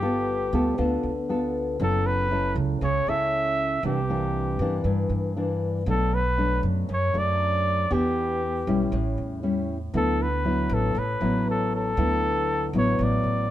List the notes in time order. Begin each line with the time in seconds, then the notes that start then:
Already playing: G1 G3 G4
0.02 B3 F4 A4
0.53 D2 B3 F4 A4
0.78 D2 D3 B3 F4 A4
1.03 D2
1.29 B3 F4 A4
1.80 F#1 F#3 C#4 E4 A4
2.07 B4
2.31 C#4 E4 A4
2.56 C#2
2.81 C#2 C#3 C#5
3.07 C#2 C#4 E4 A4 E5
3.83 C2 C3 E3 A#3 D4 G4
4.10 E3 A#3 D4
4.59 G2 E3 A#3 D4
4.84 G2
5.09 G2
5.37 E3 A#3 D4
5.86 B1 B2 F#3 A3 D4 A4
6.14 B4
6.37 F#3 A3 D4
6.63 F#2
6.89 F#2
6.93 C#5
7.14 F#2 F#3 A3 D4
7.18 D5
7.90 E2 E3 B3 D4 G4
8.67 B1 G3 C#4 E4
8.92 A1 A2
9.18 E2
9.43 G3 C#4 E4
9.93 D2 D3 F#3 B3 E4 A4
10.22 B4
10.45 F#3 B3 E4
10.69 A1 A4
10.95 A1 A2 B4
11.21 A1 F#3 B3 E4
11.50 A4
11.76 A4
11.97 D2 D3 F#3 B3 E4
12.73 A1 F#3 B3 E4
12.78 C#5
12.99 A1 A2
13.03 D5
13.24 A1